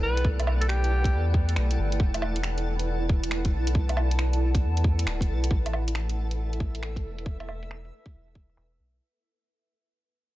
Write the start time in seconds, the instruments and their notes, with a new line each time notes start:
Already playing: synth texture A3 A4, ambient pad E4 B4 D5 F#5 G5
0.03 sub bass B1, alto saxophone B4
0.17 closed hi-hat
0.25 kick
0.40 closed hi-hat, low woodblock
0.47 low woodblock
0.61 alto saxophone A4, closed hi-hat
0.68 alto saxophone G4, finger snap
0.84 closed hi-hat
1.04 kick, closed hi-hat
1.12 sub bass E2
1.34 kick
1.49 closed hi-hat
1.56 sub bass B1, finger snap
1.71 closed hi-hat
1.78 sub bass G1
1.92 closed hi-hat
2.00 sub bass E1, kick
2.14 closed hi-hat, low woodblock
2.22 low woodblock
2.36 closed hi-hat
2.43 finger snap
2.54 ambient pad A5, closed hi-hat
2.79 closed hi-hat
3.09 sub bass E1, kick
3.23 closed hi-hat
3.31 finger snap
3.45 kick, closed hi-hat
3.53 sub bass B1
3.67 closed hi-hat
3.75 kick
3.89 closed hi-hat, low woodblock
3.97 low woodblock
4.11 closed hi-hat
4.19 finger snap
4.33 closed hi-hat
4.55 kick, closed hi-hat
4.63 sub bass E2
4.77 closed hi-hat
4.84 kick
4.99 closed hi-hat
5.06 sub bass D1, finger snap
5.21 kick, closed hi-hat
5.29 sub bass B1
5.44 closed hi-hat
5.50 sub bass A1, synth texture E4 E5, ambient pad A4, kick
5.66 closed hi-hat, low woodblock
5.73 low woodblock
5.88 closed hi-hat
5.95 finger snap
6.09 closed hi-hat
6.25 ambient pad E5
6.31 closed hi-hat
6.53 closed hi-hat
6.60 sub bass A1, kick
6.75 closed hi-hat
6.83 finger snap
6.96 kick, closed hi-hat
7.04 sub bass E1
7.18 closed hi-hat
7.26 kick
7.40 closed hi-hat, low woodblock
7.49 low woodblock
7.63 closed hi-hat
7.71 finger snap
7.85 closed hi-hat
8.06 kick, closed hi-hat
8.13 sub bass E1
8.28 closed hi-hat
8.35 kick
8.49 closed hi-hat
8.57 sub bass E1, finger snap
8.72 closed hi-hat
8.79 sub bass B1